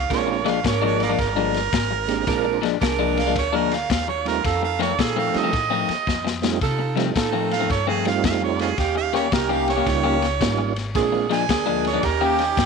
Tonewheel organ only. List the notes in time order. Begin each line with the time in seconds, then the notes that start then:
0.11 G#3 A#3 C4 D4 F4
2.08 G#3 A#3 C4 D4 G4
2.27 G#3 A#3 C4 D4 F4
4.25 G3 A3 C4 D#4 F4
5.33 G3 A3 C4 D#4 F4
6.42 G3 A3 C4 D#4 F4
6.97 G3 A3 C4 D#4 F4
8.06 G3 A3 C4 D#4 F4
9.86 G3 A#3 C#4 D#4 F4
10.41 G3 A#3 C#4 D#4 F4
10.95 G#3 A#3 C4 D4 F4